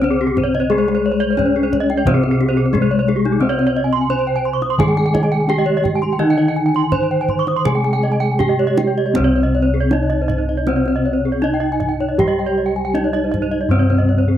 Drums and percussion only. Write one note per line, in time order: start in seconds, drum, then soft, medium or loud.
0.03 kendang slap soft
0.37 kendang slap soft
0.37 kendang low soft
0.54 kendang slap soft
0.88 kendang slap soft
1.39 kendang slap soft
1.39 kendang low soft
1.73 kendang low soft
1.90 kendang slap soft
2.07 kendang slap soft
2.07 kendang low medium
2.23 kendang slap soft
2.40 kendang slap soft
2.75 kendang slap soft
2.75 kendang low soft
3.09 kendang slap soft
3.25 kendang slap soft
3.59 kendang slap soft
4.10 kendang slap soft
4.62 kendang slap soft
4.80 kendang slap soft
4.80 kendang high soft
4.80 kendang low medium
4.98 kendang slap soft
5.15 kendang slap soft
5.15 kendang high soft
5.15 kendang low soft
5.49 kendang slap soft
5.85 kendang slap soft
5.85 kendang low soft
6.03 kendang slap soft
6.39 kendang slap soft
6.74 kendang slap soft
6.92 kendang slap soft
6.92 kendang low soft
7.28 kendang low soft
7.47 kendang slap soft
7.65 kendang low soft
8.03 kendang slap soft
8.40 kendang slap soft
8.40 kendang low soft
8.77 kendang high soft
9.15 kendang high soft
9.15 kendang low soft
9.91 kendang high soft
10.10 kendang slap soft
10.29 kendang low soft
10.67 kendang high soft
10.86 kendang slap soft
11.80 kendang low soft
12.00 kendang slap soft
12.19 kendang low soft
12.95 kendang high soft
13.14 kendang slap soft
13.34 kendang low soft
13.90 kendang slap soft